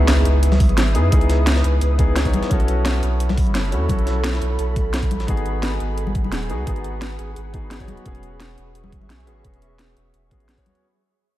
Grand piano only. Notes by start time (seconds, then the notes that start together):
Already playing: B3 D#4 E4 G#4
0.94 B3 D#4 E4 G#4
1.10 B3 D#4 E4 G#4
1.98 B3 D#4 E4 G#4
2.24 B3 D#4 E4 C#5
2.49 C#4 E4 F#4 A4
3.71 C#4 E4 F#4 A4
3.88 C#4 E4 F#4 A4
5.27 B3 D#4 F#4 G#4
6.49 B3 D#4 F#4 G#4
6.66 B3 D#4 F#4 G#4
7.53 B3 D#4 F#4 G#4
7.79 B3 D#4 F#4 C#5
8.04 B3 C#4 F#4 G#4
9.26 B3 C#4 F#4 G#4
9.43 B3 C#4 F#4 G#4
10.30 B3 C#4 F#4 G#4
10.57 B3 C#4 F#4 C#5